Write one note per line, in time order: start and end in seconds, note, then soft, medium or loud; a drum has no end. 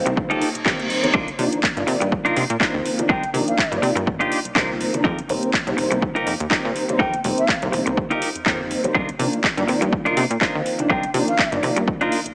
0.00 0.27 D#3 medium
0.00 0.27 G3 medium
0.00 0.28 A#3 medium
0.00 0.28 C4 loud
0.06 0.35 C2 medium
0.06 muted clean electric guitar stroke medium
0.06 closed hi-hat medium
0.16 muted clean electric guitar stroke soft
0.16 kick loud
0.16 reverse cymbal medium
0.30 0.40 D#3 medium
0.30 0.40 G3 medium
0.30 0.40 A#3 medium
0.30 0.48 D#4 loud
0.30 0.40 D#4 medium
0.30 0.48 F4 loud
0.30 0.48 G4 loud
0.30 0.49 A4 loud
0.30 closed hi-hat soft
0.42 open hi-hat loud
0.55 0.64 F1 soft
0.55 closed hi-hat medium
0.65 0.74 F1 medium
0.65 1.00 D#3 medium
0.65 1.00 G3 medium
0.65 1.00 A#3 medium
0.65 1.01 C4 medium
0.65 0.79 D#4 medium
0.65 0.79 F4 medium
0.65 0.80 G4 medium
0.65 0.80 A#4 loud
0.65 kick loud
0.65 clap loud
0.80 closed hi-hat soft
0.90 muted clean electric guitar stroke soft
0.90 open hi-hat medium
1.03 1.13 D#3 medium
1.03 1.13 G3 medium
1.03 1.13 A#3 medium
1.03 1.13 C4 medium
1.03 muted clean electric guitar stroke soft
1.03 closed hi-hat medium
1.14 1.31 C2 loud
1.14 1.28 D4 loud
1.14 1.28 D#4 loud
1.14 1.28 F4 loud
1.14 1.28 A#4 loud
1.14 kick loud
1.28 closed hi-hat medium
1.38 1.47 C3 medium
1.38 1.56 D#3 medium
1.38 1.56 F3 medium
1.38 1.56 A#3 medium
1.38 1.57 D4 loud
1.38 muted clean electric guitar stroke soft
1.38 open hi-hat loud
1.53 closed hi-hat medium
1.63 kick loud
1.63 clap loud
1.76 1.84 G2 loud
1.76 2.22 D#3 medium
1.76 2.22 F3 medium
1.76 2.23 A#3 medium
1.76 2.23 D5 loud
1.76 closed hi-hat medium
1.87 1.96 C3 medium
1.87 muted clean electric guitar stroke medium
1.87 open hi-hat medium
2.00 2.30 G2 medium
2.00 muted clean electric guitar stroke medium
2.00 closed hi-hat medium
2.11 muted clean electric guitar stroke soft
2.11 kick loud
2.25 2.35 D#3 medium
2.25 2.35 F3 medium
2.25 2.35 A#3 medium
2.25 2.43 D4 loud
2.25 2.43 D#4 loud
2.25 2.43 F4 loud
2.25 2.35 F4 medium
2.25 2.44 A#4 loud
2.25 closed hi-hat soft
2.36 2.45 C3 loud
2.36 open hi-hat loud
2.50 2.57 A#2 medium
2.50 closed hi-hat medium
2.60 2.96 D#3 medium
2.60 2.96 F3 medium
2.60 2.96 A#3 medium
2.60 2.96 C4 loud
2.60 2.74 D4 loud
2.60 2.74 D#4 medium
2.60 2.75 F4 medium
2.60 2.75 A#4 loud
2.60 kick loud
2.60 clap loud
2.74 2.81 D#2 loud
2.85 muted clean electric guitar stroke soft
2.85 open hi-hat loud
2.98 3.14 D#3 medium
2.98 3.15 F3 medium
2.98 3.15 A#3 medium
2.98 3.15 D4 medium
2.98 muted clean electric guitar stroke soft
2.98 closed hi-hat medium
3.09 3.26 C2 loud
3.09 3.23 D4 loud
3.09 3.23 D#4 loud
3.09 3.23 F4 loud
3.09 3.24 A#4 loud
3.09 3.30 G5 loud
3.09 kick loud
3.23 closed hi-hat medium
3.34 3.42 C3 medium
3.34 3.51 D#3 medium
3.34 3.52 F3 medium
3.34 3.52 A#3 medium
3.34 3.52 D4 loud
3.34 muted clean electric guitar stroke soft
3.34 open hi-hat loud
3.48 3.83 F5 medium
3.48 closed hi-hat medium
3.58 kick loud
3.58 clap loud
3.72 3.79 G2 loud
3.72 4.17 D#3 medium
3.72 4.18 F3 medium
3.72 4.18 A#3 medium
3.72 4.18 D5 loud
3.72 closed hi-hat medium
3.82 3.91 C3 medium
3.82 muted clean electric guitar stroke medium
3.82 open hi-hat loud
3.95 4.25 G2 medium
3.95 muted clean electric guitar stroke medium
3.95 closed hi-hat medium
4.06 muted clean electric guitar stroke soft
4.06 kick loud
4.20 4.30 D#3 medium
4.20 4.30 F3 medium
4.20 4.30 A#3 medium
4.20 4.38 D4 loud
4.20 4.38 D#4 loud
4.20 4.38 F4 loud
4.20 4.30 F4 medium
4.20 4.39 G4 loud
4.20 closed hi-hat soft
4.32 open hi-hat loud
4.45 4.54 C2 soft
4.45 closed hi-hat medium
4.55 4.86 C2 medium
4.55 4.91 D#3 medium
4.55 4.91 F3 medium
4.55 4.91 A#3 medium
4.55 4.91 C4 medium
4.55 4.69 D4 medium
4.55 4.69 D#4 medium
4.55 4.70 F4 medium
4.55 4.70 A#4 loud
4.55 kick loud
4.55 clap loud
4.80 muted clean electric guitar stroke soft
4.80 open hi-hat loud
4.93 5.04 D#3 medium
4.93 5.04 F3 medium
4.93 5.04 A#3 medium
4.93 5.04 D4 loud
4.93 muted clean electric guitar stroke soft
4.93 closed hi-hat medium
5.04 5.21 F2 loud
5.04 5.18 D#4 loud
5.04 5.18 F4 loud
5.04 5.18 G4 loud
5.04 5.19 A#4 loud
5.04 kick loud
5.19 closed hi-hat medium
5.28 5.38 F1 medium
5.28 5.47 D#3 medium
5.28 5.47 G3 medium
5.28 5.47 A#3 medium
5.28 5.47 C4 loud
5.28 muted clean electric guitar stroke soft
5.28 open hi-hat loud
5.43 closed hi-hat medium
5.54 kick loud
5.54 clap loud
5.67 5.74 C2 loud
5.67 6.13 D#3 medium
5.67 6.13 G3 medium
5.67 6.13 A#3 medium
5.67 6.13 C4 loud
5.67 closed hi-hat medium
5.77 5.86 F1 medium
5.77 muted clean electric guitar stroke medium
5.77 open hi-hat loud
5.91 6.20 C2 medium
5.91 muted clean electric guitar stroke medium
5.91 closed hi-hat medium
6.02 muted clean electric guitar stroke soft
6.02 kick loud
6.15 6.25 D#3 medium
6.15 6.25 G3 medium
6.15 6.25 A#3 medium
6.15 6.33 D#4 loud
6.15 6.25 D#4 medium
6.15 6.33 F4 loud
6.15 6.34 G4 loud
6.15 6.34 A#4 loud
6.15 closed hi-hat soft
6.27 6.35 F1 loud
6.27 open hi-hat loud
6.40 6.47 D#2 medium
6.40 closed hi-hat medium
6.50 6.86 D#3 medium
6.50 6.86 G3 medium
6.50 6.86 A#3 medium
6.50 6.86 C4 medium
6.50 6.64 D#4 medium
6.50 6.64 F4 medium
6.50 6.65 G4 medium
6.50 6.65 A#4 loud
6.50 kick loud
6.50 clap loud
6.65 6.72 A#2 loud
6.75 muted clean electric guitar stroke soft
6.75 open hi-hat loud
6.88 7.05 D#3 medium
6.88 7.05 G3 medium
6.88 7.05 A#3 medium
6.88 7.05 C4 medium
6.88 muted clean electric guitar stroke soft
6.88 closed hi-hat medium
6.99 7.16 F2 loud
6.99 7.13 D#4 loud
6.99 7.13 F4 loud
6.99 7.14 G4 loud
6.99 7.14 A#4 loud
6.99 7.20 G5 loud
6.99 kick loud
7.14 closed hi-hat medium
7.24 7.33 F1 medium
7.24 7.41 D#3 medium
7.24 7.42 G3 medium
7.24 7.42 A#3 medium
7.24 7.42 C4 loud
7.24 muted clean electric guitar stroke soft
7.24 open hi-hat loud
7.38 7.73 F5 medium
7.38 closed hi-hat medium
7.49 kick loud
7.49 clap loud
7.61 7.69 C2 loud
7.61 8.07 D#3 medium
7.61 8.08 G3 medium
7.61 8.08 A#3 medium
7.61 8.08 C4 loud
7.61 closed hi-hat medium
7.72 7.82 F1 medium
7.72 muted clean electric guitar stroke medium
7.72 open hi-hat loud
7.86 8.16 C2 medium
7.86 muted clean electric guitar stroke medium
7.86 closed hi-hat medium
7.97 muted clean electric guitar stroke soft
7.97 kick loud
8.10 8.20 D#3 medium
8.10 8.20 G3 medium
8.10 8.20 A#3 medium
8.10 8.28 D#4 loud
8.10 8.20 D#4 medium
8.10 8.29 F4 loud
8.10 8.29 G4 loud
8.10 8.29 A#4 loud
8.10 closed hi-hat soft
8.22 open hi-hat loud
8.35 8.44 F2 soft
8.35 closed hi-hat medium
8.46 8.76 F2 medium
8.46 8.81 D#3 medium
8.46 8.81 G3 medium
8.46 8.81 A#3 medium
8.46 8.81 C4 medium
8.46 8.60 D#4 medium
8.46 8.60 F4 medium
8.46 8.60 G4 medium
8.46 8.60 A#4 loud
8.46 kick loud
8.46 clap loud
8.70 muted clean electric guitar stroke soft
8.70 open hi-hat loud
8.84 8.94 D#3 medium
8.84 8.94 G3 medium
8.84 8.94 A#3 medium
8.84 8.94 C4 medium
8.84 muted clean electric guitar stroke soft
8.84 closed hi-hat medium
8.94 9.11 C2 loud
8.94 9.08 D4 loud
8.94 9.09 D#4 loud
8.94 9.09 F4 loud
8.94 9.09 A#4 loud
8.94 kick loud
9.09 closed hi-hat medium
9.19 9.28 C3 loud
9.19 9.37 D#3 medium
9.19 9.37 F3 medium
9.19 9.37 A#3 medium
9.19 9.37 D4 loud
9.19 muted clean electric guitar stroke soft
9.19 open hi-hat loud
9.33 closed hi-hat medium
9.44 kick loud
9.44 clap loud
9.57 9.64 G2 loud
9.57 10.03 D#3 medium
9.57 10.03 F3 medium
9.57 10.03 A#3 medium
9.57 10.03 D5 loud
9.57 closed hi-hat medium
9.68 9.77 C3 medium
9.68 muted clean electric guitar stroke medium
9.68 open hi-hat medium
9.81 10.11 G2 medium
9.81 muted clean electric guitar stroke loud
9.81 closed hi-hat medium
9.92 muted clean electric guitar stroke soft
9.92 kick loud
10.05 10.15 D#3 medium
10.05 10.15 F3 medium
10.05 10.16 A#3 medium
10.05 10.23 D4 loud
10.05 10.24 D#4 loud
10.05 10.24 F4 loud
10.05 10.16 F4 medium
10.05 10.24 A#4 loud
10.05 closed hi-hat soft
10.17 10.25 C3 loud
10.17 open hi-hat loud
10.30 10.37 A#2 medium
10.30 closed hi-hat medium
10.41 10.76 D#3 medium
10.41 10.76 F3 medium
10.41 10.76 A#3 medium
10.41 10.76 C4 medium
10.41 10.55 D4 medium
10.41 10.55 D#4 medium
10.41 10.55 F4 medium
10.41 10.55 A#4 loud
10.41 kick loud
10.41 clap loud
10.55 10.62 D#2 loud
10.65 muted clean electric guitar stroke soft
10.65 open hi-hat loud
10.79 10.95 D#3 medium
10.79 10.95 F3 medium
10.79 10.95 A#3 medium
10.79 10.95 D4 medium
10.79 muted clean electric guitar stroke soft
10.79 closed hi-hat medium
10.90 11.06 C2 loud
10.90 11.03 D4 loud
10.90 11.04 D#4 loud
10.90 11.04 F4 loud
10.90 11.04 A#4 loud
10.90 11.10 G5 loud
10.90 kick loud
11.03 closed hi-hat medium
11.14 11.23 C3 medium
11.14 11.32 D#3 medium
11.14 11.32 F3 medium
11.14 11.32 A#3 medium
11.14 11.32 D4 loud
11.14 muted clean electric guitar stroke soft
11.14 open hi-hat loud
11.28 11.63 F5 loud
11.28 closed hi-hat medium
11.39 kick loud
11.39 clap loud
11.52 11.59 G2 loud
11.52 11.98 D#3 medium
11.52 11.98 F3 medium
11.52 11.98 A#3 medium
11.52 11.98 D5 loud
11.52 closed hi-hat medium
11.63 11.72 C3 medium
11.63 muted clean electric guitar stroke medium
11.63 open hi-hat medium
11.76 12.06 G2 medium
11.76 muted clean electric guitar stroke loud
11.76 closed hi-hat medium
11.88 muted clean electric guitar stroke soft
11.88 kick loud
12.01 12.10 D#3 medium
12.01 12.11 F3 medium
12.01 12.11 A#3 medium
12.01 12.19 D4 loud
12.01 12.19 D#4 loud
12.01 12.11 F4 medium
12.01 12.19 F4 loud
12.01 12.20 A#4 loud
12.01 closed hi-hat soft
12.12 open hi-hat loud
12.26 12.34 C2 soft
12.26 closed hi-hat medium